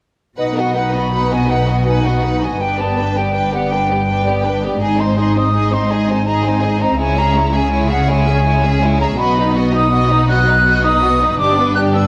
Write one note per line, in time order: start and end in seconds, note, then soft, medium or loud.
0.38 2.57 B1 soft
0.38 2.57 B2 soft
0.38 0.56 D#4 soft
0.38 0.56 B4 soft
0.38 0.44 D#5 medium
0.38 0.55 F#5 soft
0.56 0.76 B3 soft
0.56 0.75 F#4 soft
0.56 0.76 D#5 soft
0.56 0.75 F#5 soft
0.75 0.94 D#4 soft
0.75 0.94 B4 soft
0.75 0.94 F#5 soft
0.75 0.95 F#5 soft
0.93 1.13 B3 soft
0.93 1.13 F#4 soft
0.93 1.13 D#5 soft
0.93 1.31 B5 soft
1.12 1.30 D#4 soft
1.12 1.30 B4 soft
1.12 1.30 F#5 soft
1.31 1.50 B3 soft
1.31 1.50 F#4 soft
1.31 1.50 D#5 soft
1.31 1.52 G#5 soft
1.49 1.68 D#4 soft
1.49 1.68 B4 soft
1.49 1.87 F#5 soft
1.49 1.69 F#5 soft
1.68 1.87 B3 soft
1.68 1.87 F#4 soft
1.68 1.88 D#5 soft
1.86 2.04 D#4 soft
1.86 2.04 B4 soft
1.86 2.04 F#5 soft
1.86 2.07 G#5 soft
2.05 2.24 B3 soft
2.05 2.24 F#4 soft
2.05 2.24 D#5 soft
2.05 2.41 F#5 medium
2.23 2.43 D#4 soft
2.23 2.43 B4 soft
2.23 2.42 F#5 soft
2.42 2.61 B3 soft
2.42 2.61 F#4 soft
2.42 2.61 D#5 soft
2.42 2.62 G#5 soft
2.60 4.77 G1 soft
2.60 4.77 G2 soft
2.60 2.78 D4 soft
2.60 2.78 B4 soft
2.60 2.82 G5 medium
2.60 2.79 G5 soft
2.79 2.98 B3 soft
2.79 2.98 G4 soft
2.79 2.98 D5 soft
2.79 3.18 A5 medium
2.97 3.17 D4 soft
2.97 3.16 B4 soft
2.97 3.17 G5 soft
3.16 3.35 B3 soft
3.16 3.35 G4 soft
3.16 3.35 D5 soft
3.16 3.53 G5 medium
3.35 3.52 D4 soft
3.35 3.52 B4 soft
3.35 3.52 G5 soft
3.53 3.72 B3 soft
3.53 3.72 G4 soft
3.53 3.72 D5 soft
3.53 3.73 F#5 soft
3.70 3.90 D4 soft
3.70 3.91 B4 soft
3.70 3.89 G5 soft
3.70 4.58 G5 medium
3.89 4.09 B3 soft
3.89 4.08 G4 soft
3.89 4.08 D5 soft
4.06 4.25 D4 soft
4.06 4.25 B4 soft
4.06 4.24 G5 soft
4.25 4.45 B3 soft
4.25 4.45 G4 soft
4.25 4.44 D5 soft
4.44 4.63 D4 soft
4.44 4.63 B4 soft
4.44 4.63 G5 soft
4.63 4.81 B3 soft
4.63 4.82 G4 soft
4.63 4.82 D5 soft
4.81 6.96 G#1 soft
4.81 6.96 G#2 soft
4.81 4.98 D#4 soft
4.81 4.99 G#4 soft
4.81 4.99 D#5 soft
4.81 5.01 G#5 medium
4.99 5.18 C4 soft
4.99 5.18 D#4 soft
4.99 5.18 C5 soft
4.99 5.18 C6 medium
5.17 5.36 D#4 soft
5.17 5.36 G#4 soft
5.17 5.37 D#5 soft
5.17 5.36 C6 medium
5.35 5.54 C4 soft
5.35 5.55 D#4 soft
5.35 5.55 C5 soft
5.35 5.75 D#6 medium
5.53 5.71 D#4 soft
5.53 5.72 G#4 soft
5.53 5.72 D#5 soft
5.71 5.90 C4 soft
5.71 5.91 D#4 soft
5.71 5.91 C5 soft
5.71 5.92 C6 medium
5.91 6.09 D#4 soft
5.91 6.10 G#4 soft
5.91 6.09 D#5 soft
5.91 6.28 G#5 medium
6.09 6.27 C4 soft
6.09 6.27 D#4 soft
6.09 6.28 C5 soft
6.26 6.44 D#4 soft
6.26 6.44 G#4 soft
6.26 6.45 D#5 soft
6.26 6.45 A#5 medium
6.45 6.64 C4 soft
6.45 6.64 D#4 soft
6.45 6.64 C5 soft
6.45 6.83 G#5 medium
6.62 6.82 D#4 soft
6.62 6.82 G#4 soft
6.62 6.81 D#5 soft
6.80 7.00 C4 soft
6.80 7.00 D#4 soft
6.80 7.00 C5 soft
6.80 6.99 A#5 medium
6.99 9.15 C#2 soft
6.99 9.15 C#3 soft
6.99 7.17 G#3 soft
6.99 7.16 E4 soft
6.99 7.17 C#5 soft
6.99 7.20 G#5 medium
7.17 7.37 C#4 soft
7.17 7.36 G#4 soft
7.17 7.37 E5 soft
7.17 7.54 A#5 medium
7.35 7.55 G#3 soft
7.35 7.55 E4 soft
7.35 7.54 C#5 soft
7.53 7.73 C#4 soft
7.53 7.73 G#4 soft
7.53 7.72 E5 soft
7.53 7.91 G#5 medium
7.71 7.90 G#3 soft
7.71 7.90 E4 soft
7.71 7.89 C#5 soft
7.89 8.09 C#4 soft
7.89 8.10 G#4 soft
7.89 8.09 E5 soft
7.89 8.10 F#5 medium
8.08 8.28 G#3 soft
8.08 8.28 E4 soft
8.08 8.27 C#5 soft
8.08 9.00 G#5 medium
8.27 8.46 C#4 soft
8.27 8.46 G#4 soft
8.27 8.46 E5 soft
8.45 8.63 G#3 soft
8.45 8.63 E4 soft
8.45 8.63 C#5 soft
8.63 8.83 C#4 soft
8.63 8.82 G#4 soft
8.63 8.82 E5 soft
8.82 9.01 G#3 soft
8.82 9.01 E4 soft
8.82 9.01 C#5 soft
9.00 9.19 C#4 soft
9.00 9.19 G#4 soft
9.00 9.19 E5 soft
9.00 9.07 A#5 medium
9.18 11.35 B1 medium
9.18 11.35 B2 soft
9.18 9.36 B3 soft
9.18 9.36 F#4 soft
9.18 9.36 D#5 soft
9.18 9.54 B5 medium
9.37 9.56 D#4 soft
9.37 9.56 B4 soft
9.54 9.74 B3 soft
9.54 9.74 F#4 soft
9.54 9.75 D#5 soft
9.72 9.91 D#4 soft
9.72 9.93 D#4 soft
9.72 9.93 B4 soft
9.72 10.26 D#6 medium
9.91 10.09 B3 soft
9.91 10.09 F#4 soft
9.91 10.10 D#5 soft
10.09 10.28 D#4 medium
10.09 10.29 D#4 soft
10.09 10.29 B4 soft
10.28 10.48 B3 soft
10.28 10.47 F#4 medium
10.28 10.47 D#5 soft
10.28 10.83 F#6 medium
10.47 10.66 D#4 soft
10.47 10.66 B4 soft
10.65 10.83 B3 soft
10.65 10.83 F#4 soft
10.65 10.83 D#5 soft
10.83 11.02 D#4 medium
10.83 11.02 D#4 soft
10.83 11.03 B4 soft
10.83 11.38 D#6 medium
11.02 11.21 B3 soft
11.02 11.21 F#4 soft
11.02 11.21 D#5 soft
11.21 11.39 D#4 soft
11.21 11.40 B4 soft
11.38 12.07 G1 medium
11.38 12.07 G2 medium
11.38 11.56 D4 soft
11.38 11.56 G4 medium
11.38 11.57 D5 medium
11.38 11.74 D6 medium
11.57 11.76 B3 soft
11.57 11.75 D4 soft
11.57 11.76 B4 soft
11.75 11.94 D4 soft
11.75 11.93 G4 soft
11.75 11.95 D5 soft
11.75 11.81 F#6 medium
11.94 12.07 B3 medium
11.94 12.07 D4 soft
11.94 12.07 B4 soft
11.94 12.07 E6 medium